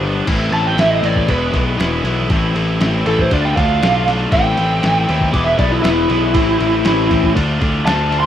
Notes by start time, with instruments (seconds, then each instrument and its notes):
Already playing: picked electric bass G1
0.01 distorted electric guitar G2 D3 G3 B3 D4 G4
0.25 picked electric bass A1, distorted electric guitar A2 E3 A3 C4 E4, kick, crash, ride
0.51 picked electric bass A1, distorted electric guitar A2 E3 A3 C4 E4, lead electric guitar A5, ride
0.67 lead electric guitar G5
0.76 picked electric bass A1, distorted electric guitar A2 E3 A3 C4 E4, lead electric guitar E5, snare, ride
0.90 lead electric guitar D#5
1.01 picked electric bass A1, distorted electric guitar A2 E3 A3 C4 E4, ride
1.06 lead electric guitar D5
1.16 kick
1.26 picked electric bass E1, distorted electric guitar E2 B2 E3 G#3 B3 E4, kick, ride
1.31 lead electric guitar B4
1.52 picked electric bass B1, distorted electric guitar E2 B2 E3 G#3 B3 E4, kick, ride
1.76 picked electric bass E1, distorted electric guitar E2 B2 E3 G#3 B3 E4, ride
1.81 snare
2.03 picked electric bass B1, distorted electric guitar E2 B2 E3 G#3 B3 E4, ride
2.30 picked electric bass A1, distorted electric guitar A2 E3 A3 C4 E4, kick, ride
2.54 picked electric bass A1, distorted electric guitar A2 E3 A3 C4 E4, ride
2.80 picked electric bass A1, distorted electric guitar A2 E3 A3 C4 E4, snare, ride
3.05 picked electric bass A1, distorted electric guitar A2 E3 A3 C4 E4, lead electric guitar A4, ride
3.19 lead electric guitar C5, kick
3.31 picked electric bass D2, distorted electric guitar D3 A3 D4 F4, lead electric guitar D5, kick, ride
3.45 lead electric guitar G5
3.56 picked electric bass D2, distorted electric guitar D3 A3 D4 F4, lead electric guitar F5, kick, ride
3.82 picked electric bass B1, distorted electric guitar D3 A3 D4 F4, snare, ride
4.07 distorted electric guitar D3 A3 D4 F4, snare, ride
4.32 picked electric bass A1, distorted electric guitar A2 E3 A3 C4 E4, lead electric guitar G5, kick, ride
4.57 picked electric bass A1, distorted electric guitar A2 E3 A3 C4 E4, ride
4.83 picked electric bass A1, distorted electric guitar A2 E3 A3 C4 E4, snare, ride
5.08 picked electric bass D#2, distorted electric guitar A2 E3 A3 C4 E4, ride
5.21 kick
5.33 picked electric bass E1, distorted electric guitar E2 B2 E3 G#3 B3 E4, lead electric guitar D6, kick, ride
5.44 lead electric guitar E5
5.57 picked electric bass B1, distorted electric guitar E2 B2 E3 G#3 B3 E4, lead electric guitar D5, kick, ride
5.72 lead electric guitar E4
5.81 picked electric bass E1, distorted electric guitar E2 B2 E3 G#3 B3 E4, lead electric guitar E4, snare, ride
6.09 picked electric bass B1, distorted electric guitar E2 B2 E3 G#3 B3 E4, ride
6.33 picked electric bass A1, distorted electric guitar A2 E3 A3 C4 E4, kick, ride
6.58 picked electric bass A1, distorted electric guitar A2 E3 A3 C4 E4, ride
6.84 picked electric bass A1, distorted electric guitar A2 E3 A3 C4 E4, snare, ride
7.08 picked electric bass A1, distorted electric guitar A2 E3 A3 C4 E4, kick, ride
7.24 kick
7.33 picked electric bass D2, distorted electric guitar D3 A3 D4 F4, kick, ride
7.58 picked electric bass D2, distorted electric guitar D3 A3 D4 F4, kick, ride
7.85 picked electric bass D2, distorted electric guitar D3 A3 D4 F4, lead electric guitar A5, snare, ride
8.10 distorted electric guitar D3 A3 D4 F4, ride
8.20 lead electric guitar C6